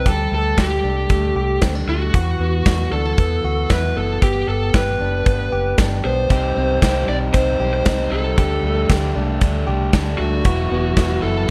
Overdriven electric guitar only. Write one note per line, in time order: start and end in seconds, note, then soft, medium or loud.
6.29 6.56 C3 medium
6.29 6.56 G3 medium
6.29 6.57 C4 medium
6.29 6.55 D#4 medium
6.56 6.82 G3 soft
6.56 6.82 C4 soft
6.56 6.82 D#4 soft
6.82 7.08 C3 medium
6.82 7.09 G3 medium
6.82 7.09 C4 medium
6.82 7.07 D#4 medium
7.08 7.34 G3 soft
7.08 7.35 C4 soft
7.08 7.34 D#4 soft
7.34 7.60 C3 medium
7.34 7.61 G3 medium
7.34 7.61 C4 medium
7.34 7.60 D#4 medium
7.61 7.87 G3 soft
7.61 7.87 C4 soft
7.61 7.86 D#4 soft
7.87 8.13 C3 medium
7.87 8.13 G3 medium
7.87 8.13 C4 medium
7.87 8.11 D#4 medium
8.12 8.37 G3 soft
8.12 8.39 C4 soft
8.12 8.38 D#4 soft
8.38 8.64 D3 medium
8.38 8.64 G3 medium
8.38 8.64 A3 medium
8.38 8.62 D4 medium
8.63 8.89 G3 soft
8.63 8.90 A3 soft
8.63 8.90 D4 soft
8.89 9.16 D3 medium
8.89 9.16 G3 medium
8.89 9.16 A3 medium
8.89 9.14 D4 medium
9.15 9.41 G3 soft
9.15 9.42 A3 soft
9.15 9.41 D4 soft
9.41 9.67 D3 medium
9.41 9.68 G3 medium
9.41 9.67 A3 medium
9.41 9.65 D4 medium
9.67 9.93 G3 soft
9.67 9.93 A3 soft
9.67 9.93 D4 medium
9.93 10.19 D3 medium
9.93 10.20 G3 medium
9.93 10.20 A3 medium
9.93 10.18 D4 medium
10.19 10.46 G3 soft
10.19 10.46 A3 soft
10.19 10.45 D4 soft
10.46 10.71 E3 medium
10.46 10.72 F#3 medium
10.46 10.72 B3 medium
10.46 10.70 E4 medium
10.71 10.97 F#3 soft
10.71 10.97 B3 soft
10.71 10.97 E4 soft
10.97 11.23 E3 medium
10.97 11.23 F#3 medium
10.97 11.23 B3 medium
10.97 11.22 E4 medium
11.23 11.49 F#3 soft
11.23 11.49 B3 soft
11.23 11.49 E4 soft